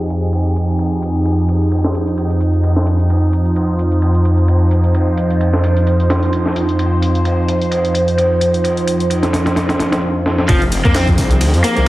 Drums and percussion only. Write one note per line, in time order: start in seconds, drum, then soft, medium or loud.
0.10 closed hi-hat medium
0.10 open hi-hat medium
0.23 closed hi-hat soft
0.33 closed hi-hat soft
0.33 ride medium
0.46 closed hi-hat soft
0.56 closed hi-hat medium
0.56 ride medium
0.69 closed hi-hat soft
0.79 closed hi-hat soft
0.79 ride medium
1.02 closed hi-hat medium
1.02 ride medium
1.15 closed hi-hat soft
1.25 closed hi-hat soft
1.25 ride medium
1.49 closed hi-hat medium
1.49 ride medium
1.61 closed hi-hat soft
1.72 closed hi-hat soft
1.72 ride medium
1.84 snare medium
1.95 closed hi-hat medium
1.95 ride medium
2.08 closed hi-hat soft
2.18 closed hi-hat soft
2.18 ride medium
2.30 closed hi-hat soft
2.30 ride soft
2.41 closed hi-hat medium
2.41 ride medium
2.53 closed hi-hat soft
2.64 closed hi-hat soft
2.64 ride medium
2.76 snare soft
2.87 closed hi-hat medium
2.87 ride medium
3.00 closed hi-hat soft
3.10 closed hi-hat soft
3.10 ride medium
3.33 closed hi-hat medium
3.33 ride medium
3.46 closed hi-hat soft
3.56 closed hi-hat soft
3.56 ride medium
3.79 closed hi-hat medium
3.79 open hi-hat medium
3.92 closed hi-hat soft
4.02 closed hi-hat soft
4.02 ride medium
4.15 closed hi-hat soft
4.25 closed hi-hat medium
4.25 ride medium
4.38 closed hi-hat soft
4.48 closed hi-hat soft
4.48 ride medium
4.71 closed hi-hat medium
4.71 ride medium
4.84 closed hi-hat soft
4.94 closed hi-hat soft
4.94 ride medium
5.17 closed hi-hat medium
5.17 ride medium
5.30 closed hi-hat soft
5.41 closed hi-hat soft
5.41 ride medium
5.53 snare medium
5.64 closed hi-hat medium
5.64 ride medium
5.77 closed hi-hat soft
5.87 closed hi-hat soft
5.87 ride medium
6.00 closed hi-hat soft
6.10 snare loud
6.10 closed hi-hat medium
6.10 ride medium
6.23 closed hi-hat soft
6.33 closed hi-hat soft
6.33 ride medium
6.46 snare soft
6.56 closed hi-hat medium
6.56 ride medium
6.69 closed hi-hat soft
6.79 closed hi-hat soft
6.79 ride medium
7.02 closed hi-hat medium
7.02 ride medium
7.15 closed hi-hat soft
7.25 closed hi-hat soft
7.25 ride medium
7.48 closed hi-hat medium
7.48 open hi-hat medium
7.62 closed hi-hat soft
7.71 closed hi-hat soft
7.71 ride medium
7.85 closed hi-hat soft
7.94 closed hi-hat medium
7.94 ride medium
8.08 closed hi-hat soft
8.18 closed hi-hat soft
8.18 ride medium
8.41 closed hi-hat medium
8.41 ride medium
8.54 closed hi-hat soft
8.64 closed hi-hat soft
8.64 ride medium
8.77 closed hi-hat soft
8.87 closed hi-hat medium
8.87 ride medium
9.00 closed hi-hat soft
9.10 closed hi-hat soft
9.10 ride medium
9.23 snare medium
9.23 closed hi-hat soft
9.33 snare medium
9.33 closed hi-hat medium
9.33 ride medium
9.46 snare loud
9.46 closed hi-hat soft
9.46 ride medium
9.56 snare loud
9.56 closed hi-hat soft
9.56 ride medium
9.69 snare loud
9.69 closed hi-hat soft
9.69 ride medium
9.80 snare loud
9.80 closed hi-hat medium
9.80 ride medium
9.92 snare loud
9.92 closed hi-hat soft
9.92 ride medium
10.26 snare medium
10.38 snare medium
10.49 kick loud
10.49 closed hi-hat soft
10.49 ride medium
10.62 closed hi-hat soft
10.72 closed hi-hat medium
10.72 ride medium
10.85 kick loud
10.85 closed hi-hat soft
10.95 snare loud
10.95 clap loud
10.95 closed hi-hat soft
10.95 ride medium
11.08 kick loud
11.08 closed hi-hat soft
11.18 kick medium
11.18 closed hi-hat medium
11.18 open hi-hat medium
11.31 closed hi-hat soft
11.41 closed hi-hat soft
11.41 ride medium
11.54 closed hi-hat soft
11.64 closed hi-hat medium
11.64 ride medium
11.77 closed hi-hat soft